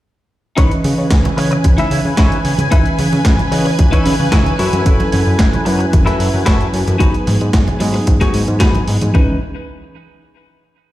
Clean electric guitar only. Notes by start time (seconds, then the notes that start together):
0.57 D#4 E4 B4 C#5
0.84 muted clean electric guitar stroke
1.24 muted clean electric guitar stroke
1.37 muted clean electric guitar stroke
1.51 muted clean electric guitar stroke
1.64 muted clean electric guitar stroke
1.78 D#4 E4 B4 E5
2.18 D#4 E4 B4 C#5
2.58 muted clean electric guitar stroke
2.71 D#4 E4 B4 E5
2.98 muted clean electric guitar stroke
3.39 muted clean electric guitar stroke
3.52 muted clean electric guitar stroke
3.65 muted clean electric guitar stroke
3.78 muted clean electric guitar stroke
3.92 D#4 E4 B4 C#5
4.32 D#4 E4 B4 C#5
4.59 E4 F#4 A4 C#5
5.12 muted clean electric guitar stroke
5.53 muted clean electric guitar stroke
5.65 muted clean electric guitar stroke
5.79 muted clean electric guitar stroke
5.92 muted clean electric guitar stroke
6.06 E4 F#4 A4 E5
6.46 E4 F#4 A4 C#5
6.86 muted clean electric guitar stroke
6.99 D#4 F#4 G#4 B4
7.26 muted clean electric guitar stroke
7.67 muted clean electric guitar stroke
7.80 muted clean electric guitar stroke
7.94 muted clean electric guitar stroke
8.07 muted clean electric guitar stroke
8.21 D#4 F#4 G#4 C#5
8.60 D#4 F#4 G#4 B4
9.01 muted clean electric guitar stroke
9.14 D#4 E4 B4